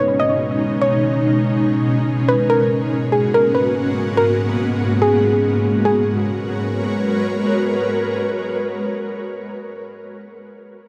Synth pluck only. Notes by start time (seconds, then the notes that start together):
Already playing: C#5
0.20 D#5
0.81 C#5
2.28 B4
2.50 A#4
3.12 G#4
3.34 A#4
3.55 B4
4.17 A#4
5.02 G#4
5.85 G#4